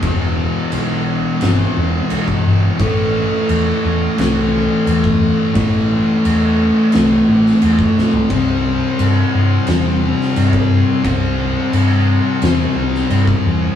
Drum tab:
CC |x---x---x---x---|x---x---x---x---|x---x---x---x---|x---x---x---x---|
SD |--------o-------|--------o-------|--------o--o--o-|--------o--o----|
FT |----------------|----------------|---------------o|----------------|
BD |o------------o--|o------------o--|o------------o--|o------------o--|

CC |x---x---x---x---|
SD |--------o--o----|
FT |----------------|
BD |o------------o--|